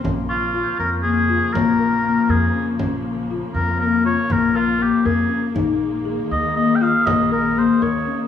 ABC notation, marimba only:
X:1
M:11/8
L:1/8
Q:1/4=120
K:Bbm
V:1 name="Marimba"
D2 F2 B, F B, B B, B D | D2 F2 B, F B, B B, B D | E2 A2 B, F B, B B, B D |]